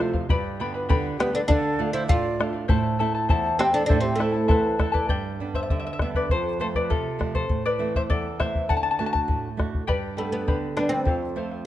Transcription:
Already playing: C3 F4 C5
0.00 F3 A3 C4 A4 C5 F5, bombo rim
0.13 C5 F5, bombo low
0.29 G2 G4 B4 D5 G5 B5, bombo low
0.60 D3 G3 B3 B4 D5 G5 B5
0.74 B4 D5 B5
0.89 D3 G4 B4 D5 G5 B5, bombo low
1.18 D3 G3 B3 G4 B4 D5 G5 B5, bombo rim
1.33 D4 A4 B4 D5 B5
1.48 D3 D4 A4 D5 F5, bombo low
1.79 A3 D4 F4 A4 D5 F5
1.93 E4 C5 D5 F5
2.07 A2 F4 A4 D5 F5, bombo low
2.40 A3 D4 F4 A4 D5 F5, bombo rim
2.53 D5 F5
2.68 A2 E4 A4 C5 E5 A5, bombo low
2.99 A3 C4 E4 A4 E5 A5
3.15 E4 A4 A5
3.29 E2 E4 A4 C5 E5 A5, bombo low
3.59 A3 C4 E4 G4 A4 E5 A5, bombo rim
3.73 D4 E4 A4 A5
3.86 D4 E4 A4 C5 E5, bombo low
3.90 A2 A4 A5
4.00 C4 G4
4.16 A3 E4 E5 A5
4.20 A3 C4 E4 A4, bombo rim
4.32 E4 A4 A5
4.48 E2 E4 A4 B4 C5 E5 A5, bombo low
4.79 A3 C4 E4 A4 E5 A5, bombo rim, bombo low
4.92 E4 A4 B4 D5 A5, bombo low
5.09 G2 D5 G5, bombo low
5.40 G3 B3 D4
5.54 C5 E5, bombo low
5.63 E5
5.70 D3 E5, bombo low
5.80 E5
5.87 E5
5.93 E5
5.99 G3 B3 D4 E5, bombo rim, bombo low
6.14 B4 D5, bombo low
6.29 F2 A4 C5, bombo low
6.60 F3 A3 C4 A4 C5
6.75 B4 D5, bombo low
6.90 C3 F4 A4, bombo low
7.19 F3 A3 C4, bombo rim, bombo low
7.35 A4 C5, bombo low
7.49 A2, bombo low
7.66 B4 D5
7.79 E3 A3 C4
7.96 C5 E5, bombo low
8.10 E2 A4 D5, bombo low
8.40 E3 A3 C4 C5 E5, bombo rim, bombo low
8.55 bombo low
8.69 D3 F#5 A5, bombo low
8.77 A5
8.83 A5
8.91 A5
8.99 A3 D4 F#4 A5
9.06 A5
9.13 A5, bombo low
9.28 A2, bombo low
9.57 A3 D4 F#4, bombo rim, bombo low
9.75 bombo low
9.87 G2 G4 B4 D5 G5 B5, bombo low
10.17 G3 A3 B3 D4 B4 D5 G5 B5
10.32 B3 B4 D5 B5
10.48 D3 G4 B4 D5 G5 B5, bombo low
10.77 G3 B3 D4 B4 D5 G5 B5, bombo rim
10.89 C4 B4 D5 B5
11.05 F2 A4 C5 F5, bombo low
11.36 F3 A3 C4 A4 C5 F5
11.51 C5 F5

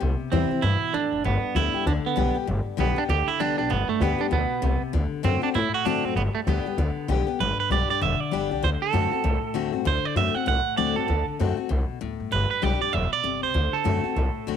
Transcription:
0.00 C2 C3
0.20 muted upright bass stroke
0.32 E2 E3 G3 C4 E4
0.51 C4 E4, muted upright bass stroke
0.62 G2 B2 E4
0.82 muted upright bass stroke
0.94 F2 A2 D4
1.12 F1
1.24 G1 G2 B3
1.43 muted upright bass stroke
1.55 D2 D3 G3 B3 E4 G4
1.74 B3 G4, muted upright bass stroke
1.86 D2 D3 D4
2.04 B3, muted upright bass stroke
2.16 B1 D3 G3 B3 G4
2.34 B3 G4, muted upright bass stroke
2.47 G1 G2
2.66 muted upright bass stroke
2.77 B1 D3 G3 B3 G4
2.96 B3 D4 G4, muted upright bass stroke
3.09 D2 D3 G4
3.28 E4, muted upright bass stroke
3.40 C2 D3 G3 B3 D4 G4
3.58 B1 B3 D4 G4
3.70 G1 G2 B3
3.89 A3, muted upright bass stroke
4.00 D2 D3 G3 B3 G4
4.18 B3 D4 G4, muted upright bass stroke
4.31 D2 B2 B3
4.51 muted upright bass stroke
4.62 C2 C3
4.82 muted upright bass stroke
4.93 D2 D3
5.12 muted upright bass stroke
5.23 F#2 D3 A3 C4 F#4
5.42 C4 D4 F#4, muted upright bass stroke
5.54 A2 E4
5.73 F#4, muted upright bass stroke
5.85 G2 D3 A3 C4 D4 F#4
6.03 F#2 C4 F#4
6.15 G1 G2 B3
6.35 A3, muted upright bass stroke
6.47 D2 D3 G3 B3 G4
6.65 B3 G4, muted upright bass stroke
6.78 D2 D3
6.96 muted upright bass stroke
7.08 B1 D3 G3 B3 G4
7.27 B3 G4, muted upright bass stroke
7.40 G1 G2 B4
7.58 B4, muted upright bass stroke
7.70 B1 G3 B3 D4 G4 D5
7.89 D4 G4 D5, muted upright bass stroke
8.01 E1 D3 E5
8.20 D5, muted upright bass stroke
8.31 G1 G3 B3 D4 G4
8.51 C2 D4 G4
8.63 D2 D3 C5
8.82 A4, muted upright bass stroke
8.93 F#2 D3 A3 C4 F#4
9.11 C4 F#4, muted upright bass stroke
9.24 C2 A2
9.43 muted upright bass stroke
9.54 D2 D3 A3 C4 F#4
9.73 G2 C4 F#4
9.85 D2 D3 C5
10.04 D5, muted upright bass stroke
10.16 F#2 D3 A3 C4 F#4 E5
10.34 C4 F#4 F#5, muted upright bass stroke
10.46 C2 A2 F#5
10.65 muted upright bass stroke
10.77 D2 D3 A3 C4 F#4 D5
10.96 G2 C4 F#4 A4
11.08 D2 D3
11.28 muted upright bass stroke
11.39 F#2 D3 A3 C4 F#4
11.57 C4 F#4, muted upright bass stroke
11.69 C2 B2
11.90 muted upright bass stroke
12.01 D2 A2
12.20 G2
12.32 G1 G2 B4
12.51 B4, muted upright bass stroke
12.62 B1 G3 B3 D4 G4 D5
12.81 D4 G4 D5, muted upright bass stroke
12.93 E1 B2 E5
13.12 D5, muted upright bass stroke
13.24 G1 C3
13.43 C#2 C5
13.54 D2 D3
13.73 A4, muted upright bass stroke
13.84 F#2 D3 A3 C4 F#4
14.04 C4 F#4, muted upright bass stroke
14.16 C2 A2
14.35 muted upright bass stroke
14.47 D2 D3 A3 C4 F#4

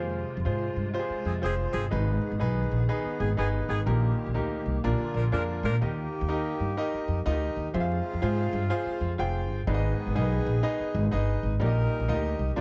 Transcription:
Already playing: F2 C3 G#3 F4 G#4 C5
0.37 F2
0.45 G#2 F4 G#4 C5
0.76 G2
0.94 F4 G4 C5
0.99 G#4
1.09 muted upright bass stroke
1.25 F2 F3 C4 G#4
1.42 F1 F3 C4 F4 G#4 C5
1.72 G1 F3 C4 G#4
1.91 G#1 G#2 D#3 B3 D#4 G#4 B4
2.31 G#1
2.39 B1 D#4 G#4 B4
2.71 A#1
2.89 D#4 G#4 B4
3.05 muted upright bass stroke
3.19 G#1 D#3 B3 G#4
3.37 G1 D#3 B3 D#4 G#4 B4
3.68 G#1 D#3 B3 G#4
3.86 A#1 A#2 A#3 D#4 G4 A#4
4.26 A#1
4.34 D2 D#4 G4 A#4
4.66 C2
4.84 A#1 A#2 D3 D4 F4 A#4
4.99 muted upright bass stroke
5.14 A#1 F3 D4 A#4
5.32 F2 F3 D4 F4 G#4 A#4
5.39 A#4
5.63 A#2 F3 D4 A#4
5.81 D#2 D#3 A#3 D#4 G4 A#4 D#5
6.21 D#2
6.29 D#4 G4 A#4 D#5
6.60 G2
6.77 D#4 G4 A#4 D#5
6.94 muted upright bass stroke
7.08 F2
7.26 D2 D#4 F4 A#4 D#5
7.31 G4
7.56 D#2
7.74 F2 C3 G#3 F4 G#4 C5 E5
7.80 F5
8.13 F2
8.22 G#2 F4 G#4 C5 F5
8.53 G2
8.70 F4 G#4 C5 F5
8.86 muted upright bass stroke
9.01 F2
9.18 F1 F4 G#4 C5 G5
9.49 G1
9.67 G#1 G#2 D#3 B3 D#4 G#4 B4 D5
9.74 D#5
10.07 G#1
10.15 B1 D#4 G#4 A#4 D#5
10.21 B4
10.46 A#1
10.63 D#4 G#4 B4 D#5
10.80 muted upright bass stroke
10.95 G#1
11.11 G1 D#4 G#4 B4 D#5
11.43 G#1
11.60 A#1 A#2 G3 D#4 G4 A#4 D5
11.66 D#5
12.00 A#1
12.08 D2 D#4 F4 A#4 D#5
12.14 G4
12.39 C2
12.56 A#1 A#2 F3 D4 F4 A#4 C5 D5

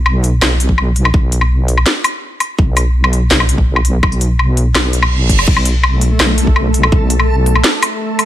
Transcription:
Already playing: B1
0.06 low woodblock
0.24 closed hi-hat
0.41 B1, snare, low woodblock
0.60 closed hi-hat
0.69 kick
0.78 low woodblock
0.96 closed hi-hat
1.05 low woodblock
1.14 B1, kick
1.32 closed hi-hat
1.41 low woodblock
1.68 closed hi-hat
1.77 low woodblock
1.86 snare
2.04 closed hi-hat, low woodblock
2.40 closed hi-hat, low woodblock
2.59 B1, kick
2.77 closed hi-hat, low woodblock
3.04 low woodblock
3.13 closed hi-hat
3.31 B1, snare
3.40 low woodblock
3.49 closed hi-hat
3.58 kick
3.76 low woodblock
3.85 closed hi-hat
4.03 B1, kick, low woodblock
4.12 closed hi-hat
4.21 closed hi-hat
4.39 low woodblock
4.57 closed hi-hat
4.75 B1, snare, reverse cymbal, low woodblock
4.93 closed hi-hat
5.03 low woodblock
5.29 kick, closed hi-hat
5.39 low woodblock
5.47 B1 A3 A4, kick, crash
5.57 low woodblock
5.65 closed hi-hat
5.83 low woodblock
6.01 closed hi-hat
6.20 B1, snare, low woodblock
6.38 closed hi-hat
6.47 kick
6.56 low woodblock
6.74 closed hi-hat
6.83 low woodblock
6.92 B1, kick
7.10 closed hi-hat
7.20 low woodblock
7.46 closed hi-hat
7.55 low woodblock
7.64 snare
7.83 closed hi-hat, low woodblock
8.19 closed hi-hat, low woodblock

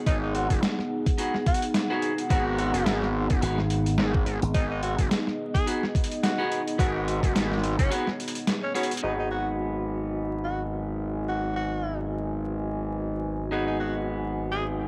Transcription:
Already playing: B3 D#4 G#4
0.06 G#1 D#4 F#5, kick, closed hi-hat
0.23 D#4
0.35 F#4, closed hi-hat
0.50 F#1, kick, closed hi-hat
0.63 snare, closed hi-hat
0.79 snare
1.06 kick, closed hi-hat
1.18 B3 D#4 F#4 G#4, closed hi-hat
1.34 snare
1.46 F#4, kick, closed hi-hat
1.54 closed hi-hat
1.62 closed hi-hat
1.74 snare, closed hi-hat
1.90 B3 D#4 F#4 G#4
2.02 closed hi-hat
2.18 closed hi-hat
2.30 G#1 B3 D#4 F#4 A#4, kick, closed hi-hat
2.59 F#4, closed hi-hat
2.74 F#1, closed hi-hat
2.86 G#1, snare, closed hi-hat
3.02 snare
3.30 F#1, kick, closed hi-hat
3.42 G#1 B3 D#4 F#4 G#4, closed hi-hat
3.58 snare
3.70 closed hi-hat
3.86 closed hi-hat
3.98 G#1, snare
4.14 kick
4.26 G#1, closed hi-hat
4.42 G#1, closed hi-hat
4.54 G#1 D#4 D#5, kick, closed hi-hat
4.70 D#4
4.83 F#4, closed hi-hat
4.99 F#1, kick, closed hi-hat
5.11 snare, closed hi-hat
5.27 snare
5.54 G#4, kick, closed hi-hat
5.66 B3 D#4 F#4 G#4, closed hi-hat
5.83 snare
5.95 kick, closed hi-hat
6.04 closed hi-hat
6.11 closed hi-hat
6.23 F#4, snare, closed hi-hat
6.38 B3 D#4 F#4 G#4
6.52 closed hi-hat
6.67 closed hi-hat
6.78 G#1 B3 D#4 F#4 A#4, kick, closed hi-hat
6.95 F#4
7.08 closed hi-hat
7.23 F#1, kick, closed hi-hat
7.35 G#1, snare, closed hi-hat
7.52 snare
7.58 snare
7.64 snare, closed hi-hat
7.71 snare
7.79 F#1 C#4, kick, closed hi-hat
7.91 B3 D#4 F#4 G#4, closed hi-hat
8.07 snare
8.20 closed hi-hat
8.28 closed hi-hat
8.35 closed hi-hat
8.47 snare, closed hi-hat
8.63 C#4
8.74 B3 C#4 D#4 F#4 G#4, closed hi-hat
8.83 closed hi-hat
8.91 closed hi-hat
8.97 closed hi-hat
9.03 G#1 B3 D#4 F#4 G#4 B4 D#5 G#5, crash
9.19 D#4
9.31 F#4
10.44 F#4
11.28 F#4
11.56 F#4
13.51 B3 D#4 F#4 G#4
13.67 D#4
13.80 F#4
14.52 G#4

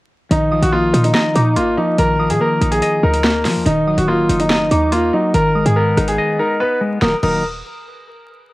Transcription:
0.31 A#1 D#3 D#4, closed hi-hat
0.51 F3 D#6
0.62 A#1 F#4, closed hi-hat
0.72 A#3 F4
0.94 A#2 D#4, closed hi-hat
1.04 D#4, closed hi-hat
1.14 D#5 A#5, snare
1.35 A#2 D#4 D6, closed hi-hat
1.56 G#1 A#3 F4, closed hi-hat
1.77 F3 D#4
1.98 A#1 D#3 A#4, closed hi-hat
2.19 F3 D#6
2.30 A#2 G#4, closed hi-hat
2.40 A#3 A#4
2.61 A#1 D#4, closed hi-hat
2.71 G#4, closed hi-hat
2.82 D#5, closed hi-hat
3.03 D2 D#4 A#4
3.14 closed hi-hat
3.24 A#3, snare
3.45 F3, snare, open hi-hat
3.56 D2
3.66 D#1 D#3 D#4, closed hi-hat
3.87 F#3 D#6
3.98 D1 F#4, closed hi-hat
4.08 A#3 F4
4.29 F#1 D#4, closed hi-hat
4.40 D#4, closed hi-hat
4.50 D#5 A#5, snare
4.71 D#2 D#4 D6, closed hi-hat
4.92 A#3 F4, closed hi-hat
5.13 F#3 D#4
5.34 G#1 D#3 A#4, closed hi-hat
5.55 G#3 D#6
5.65 G#2 G#4, closed hi-hat
5.76 B3 A#4
5.97 G#1 D#4, cross-stick, closed hi-hat
6.08 G#4, closed hi-hat
6.18 D#5
6.39 D#4 A#4
6.60 B3 B4
6.81 G#3
7.02 D#1 D#3 F#3 A#3 D#4 A#4 D#6, snare
7.23 D#1 D#3 F#3 A#3 D#4 A#4 D#6, crash

